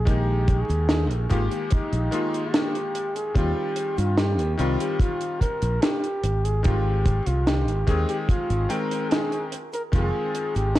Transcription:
Already playing: A#1
0.05 D#3 G#3 A#3 D#4 G4, kick, closed hi-hat, cabasa
0.48 kick, closed hi-hat, cabasa
0.61 G#4
0.69 D#2, closed hi-hat, cabasa
0.89 G#4, snare, closed hi-hat, cabasa
1.11 A#1, closed hi-hat
1.29 G#1 D#3 G#3 A#3 F4 G4, kick, closed hi-hat, cabasa
1.51 closed hi-hat, cabasa
1.70 D#4, kick, closed hi-hat, cabasa
1.93 A#1, closed hi-hat
2.11 D#3 G#3 A#3 F4, closed hi-hat, cabasa
2.33 closed hi-hat, cabasa
2.53 G4, snare, closed hi-hat, cabasa
2.75 closed hi-hat
2.95 closed hi-hat, cabasa
3.16 G#4, closed hi-hat, cabasa
3.34 D#2 D#3 G3 C4 F4 G4, kick, closed hi-hat, cabasa
3.76 closed hi-hat, cabasa
3.97 G2 F4, closed hi-hat, cabasa
4.17 G4, snare, closed hi-hat, cabasa
4.39 D#2, closed hi-hat
4.57 C2 D#3 G3 C4 F4, closed hi-hat, cabasa
4.80 G4, closed hi-hat, cabasa
5.00 F4, kick, closed hi-hat, cabasa
5.21 closed hi-hat
5.40 A#4, kick, closed hi-hat, cabasa
5.62 A#1, closed hi-hat, cabasa
5.82 G4, snare, closed hi-hat, cabasa
6.04 closed hi-hat
6.24 G#1, closed hi-hat, cabasa
6.45 G#4, closed hi-hat, cabasa
6.63 D#3 G#3 C4 F4 G4, kick, closed hi-hat, cabasa
7.06 kick, closed hi-hat, cabasa
7.26 C2 F4, closed hi-hat, cabasa
7.46 G4, snare, closed hi-hat, cabasa
7.68 G#1, closed hi-hat
7.87 D#2 D#3 G#3 C4 G#4, kick, closed hi-hat, cabasa
8.09 G4, closed hi-hat, cabasa
8.29 F4, kick, closed hi-hat, cabasa
8.50 G#1, closed hi-hat
8.69 D#3 G#3 C4 A#4 G5, closed hi-hat, cabasa
8.91 closed hi-hat, cabasa
9.11 G#4, snare, closed hi-hat, cabasa
9.32 closed hi-hat
9.52 closed hi-hat, cabasa
9.72 A#4, closed hi-hat, cabasa
9.92 F1 D#3 G#3 C4 F4 G#4, kick, closed hi-hat, cabasa
10.35 closed hi-hat, cabasa
10.55 G#1 G4, closed hi-hat, cabasa
10.75 G#4, snare, closed hi-hat, cabasa

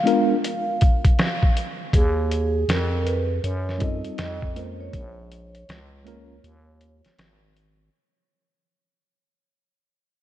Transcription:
Already playing: F5
0.04 G#3 B3 D4 F4 A#4, closed hi-hat
0.44 closed hi-hat
0.81 kick, closed hi-hat
1.05 kick, closed hi-hat
1.19 snare, closed hi-hat
1.43 kick
1.57 closed hi-hat
1.93 D#2 G#4, kick, closed hi-hat
2.31 closed hi-hat
2.69 F2 A#4, snare, closed hi-hat
3.02 A#4 B4
3.07 closed hi-hat
3.44 F#2 C#5, closed hi-hat
3.69 snare
3.78 G3 C4 D#4 F4 A4 D#5, kick, closed hi-hat
4.05 F2, closed hi-hat
4.18 F2 D#5, snare, closed hi-hat
4.42 kick
4.53 G#3 A#3 C#4 F4 A#4 C5, closed hi-hat
4.80 C#5
4.93 A#1, kick, closed hi-hat
5.32 closed hi-hat
5.55 closed hi-hat
5.69 C#2, snare, closed hi-hat
6.04 G#3 A#3 C#4 F4 A#4, closed hi-hat
6.44 D#2, closed hi-hat
6.81 closed hi-hat
7.05 G#1, snare, closed hi-hat
7.19 G#1, snare, closed hi-hat
7.57 closed hi-hat

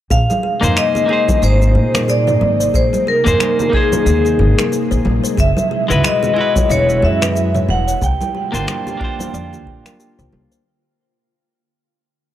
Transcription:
0.10 A#1 C3 G#3 D#4 G#4 F5, kick, cabasa
0.30 G#4, high conga, cabasa
0.43 G#4
0.61 F2 A#3 D#4 G#4 A#4 C5, mid tom, cabasa
0.76 G#4 D#5, finger snap, high conga, cabasa
0.95 G#4, low conga, cabasa
1.06 A#3 D#4 G#4
1.11 G#4 C5
1.28 C5, kick, high conga, low conga, cabasa
1.42 G#1 C5 D#5, cabasa
1.61 G#4, cabasa
1.75 A#2 G#4
1.94 A#4, finger snap, high conga, low conga, cabasa
2.08 G#4 D5, cabasa
2.27 C5, mid tom, cabasa
2.41 G#1 G#4, high conga
2.60 C5, cabasa
2.74 A#1 G#4 C5, kick, cabasa
2.93 G#4, high conga, cabasa
3.07 G#4 A#4
3.24 F2 A#3 D#4 G#4 A#4 C5, mid tom, cabasa
3.40 G#4, finger snap, high conga, cabasa
3.59 G#4, low conga, cabasa
3.70 A#3 D#4 G#4, kick
3.74 G#4 C5
3.92 C5, high conga, low conga, cabasa
4.06 D#2 D#5, cabasa
4.25 G#4, cabasa
4.39 G#1 G#4
4.58 A#4, finger snap, high conga, cabasa
4.72 G#4, cabasa
4.91 A#1 C5, cabasa
5.05 A#1 G#4, high conga
5.24 C5, cabasa
5.38 F#1 B2 E4 G#4 E5, kick, cabasa
5.57 G#4, high conga, cabasa
5.71 G#4
5.88 C#2 G#3 E4 F#4 B4, mid tom, cabasa
6.04 G#4 D#5, finger snap, high conga, cabasa
6.23 G#4, low conga, cabasa
6.34 G#3 E4 G#4
6.38 F#4 B4
6.56 C#5, kick, high conga, low conga, cabasa
6.70 E1 C#5 E5, cabasa
6.89 G#4, cabasa
7.02 F#2 G#4 E5
7.22 B4, finger snap, high conga, low conga, cabasa
7.36 G#4, cabasa
7.55 C#5, mid tom, cabasa
7.69 E1 G#4 F#5, high conga
7.88 C#5, cabasa
8.02 C2 D3 A#3 F4 G4 G5, kick, cabasa
8.21 G4, high conga, cabasa
8.35 G4
8.52 G1 A#3 D4 F4 A#4 C5, mid tom, cabasa
8.68 G4, finger snap, high conga, cabasa
8.87 G4, low conga, cabasa
8.97 A#3 D4 G4, kick
9.02 F4 C5
9.19 C5, high conga, low conga, cabasa
9.34 F2 D5, cabasa
9.53 G4, cabasa
9.67 A#1 G4, kick
9.86 A#4, finger snap, high conga, cabasa
10.00 G4, cabasa
10.19 C2 C5, cabasa
10.33 C2 G4, high conga
10.52 C5, cabasa

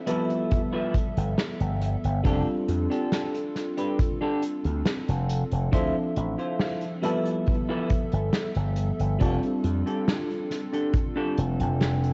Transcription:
0.06 F3 G3 B3 E4 F4 A4 B4 E5, closed hi-hat
0.30 closed hi-hat
0.51 kick, closed hi-hat
0.73 E4 F4 A4 B4
0.94 kick, closed hi-hat
1.16 G1, muted clean electric guitar stroke, closed hi-hat
1.38 muted clean electric guitar stroke, snare, closed hi-hat
1.60 G1, muted clean electric guitar stroke, closed hi-hat
1.81 muted clean electric guitar stroke, closed hi-hat
2.04 G1, closed hi-hat
2.24 F1 G3 C4 D4 F4 G4 A4, kick, closed hi-hat
2.68 F2, muted clean electric guitar stroke, closed hi-hat
2.90 D4 G4 A4, closed hi-hat
3.12 snare, closed hi-hat
3.34 closed hi-hat
3.55 snare, closed hi-hat
3.77 D4 G4 B4, closed hi-hat
3.99 kick, closed hi-hat
4.21 D4 G4 A4
4.42 closed hi-hat
4.64 D2, muted clean electric guitar stroke, closed hi-hat
4.85 muted clean electric guitar stroke, snare, closed hi-hat
5.08 F1, muted clean electric guitar stroke, closed hi-hat
5.29 muted clean electric guitar stroke, closed hi-hat
5.51 F1, closed hi-hat
5.72 D2 F3 C4 D4 E4 F4 A4 C5 E5, kick, closed hi-hat
6.16 A1, muted clean electric guitar stroke, closed hi-hat
6.38 E4 F4 C5, closed hi-hat
6.59 snare, closed hi-hat
6.81 closed hi-hat
7.02 F3 G3 B3 E4 F4 A4 B4 E5, closed hi-hat
7.25 closed hi-hat
7.46 kick, closed hi-hat
7.69 E4 F4 A4 B4
7.90 kick, closed hi-hat
8.12 G1, muted clean electric guitar stroke, closed hi-hat
8.33 muted clean electric guitar stroke, snare, closed hi-hat
8.55 G1, muted clean electric guitar stroke, closed hi-hat
8.76 muted clean electric guitar stroke, closed hi-hat
9.00 G1, closed hi-hat
9.19 F1 G3 C4 D4 F4 G4 A4, kick, closed hi-hat
9.43 closed hi-hat
9.64 F2, muted clean electric guitar stroke, closed hi-hat
9.86 D4 G4 A4, closed hi-hat
10.08 snare, closed hi-hat
10.30 closed hi-hat
10.51 snare, closed hi-hat
10.73 D4 G4 A4, closed hi-hat
10.94 kick, closed hi-hat
11.16 D4 G4 A4
11.38 F1, closed hi-hat
11.60 F1, muted clean electric guitar stroke, closed hi-hat
11.81 muted clean electric guitar stroke, snare, closed hi-hat
12.03 muted clean electric guitar stroke, closed hi-hat

